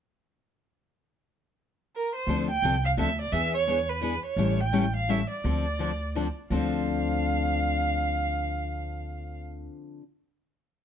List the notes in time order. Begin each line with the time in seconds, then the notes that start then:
1.96 A#4
2.16 C5
2.27 D2 D3 F3 C4 D4 A4
2.50 G5
2.62 C2 D3 F3 C4 D4 A4
2.85 F5
2.97 D2 D3 F3 C4 D4 A4 E5
3.21 D5
3.32 E2 E3 B3 D4 G#4 E5
3.54 C#5
3.67 E3 B3 D4 G#4
3.89 B4
4.01 E3 B3 D4 G#4 B4
4.25 C#5
4.36 A1 E3 G3 C#4 E4 A4
4.61 G5
4.73 E3 G3 C#4 E4 A4
4.96 F5
5.09 E3 G3 C#4 E4 A4 E5
5.31 D5
5.44 D2 D3 F3 C4 D4 A4
5.79 D3 F3 C4 D4 A4
6.15 D3 F3 C4 D4 A4
6.50 D2 D3 F3 C4 D4 A4 F5